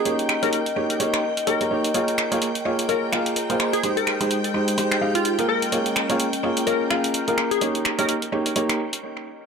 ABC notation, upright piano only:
X:1
M:4/4
L:1/16
Q:"Swing 16ths" 1/4=127
K:Ebmix
V:1 name="Upright piano"
[B,EGd]3 [B,EGd] z2 [B,EGd]2 [B,EGd]2 z2 [B,EGd] [B,EGd] [B,EGd] z | [B,FAd]3 [B,FAd] z2 [B,FAd]2 [B,FAd]2 [B,FAf]3 [B,FAc]3 | [A,EGc]3 [A,EGc] z2 [A,EGc]2 [A,EGc]2 [A,EGf]3 [B,FAB]3 | [B,FAd]3 [B,FAd] z2 [B,FAd]2 [B,FAd]2 [B,FAf]3 [B,FAB]3 |
[B,EGd]3 [B,EGd] z2 [B,EGd]2 [B,EGd]2 z6 |]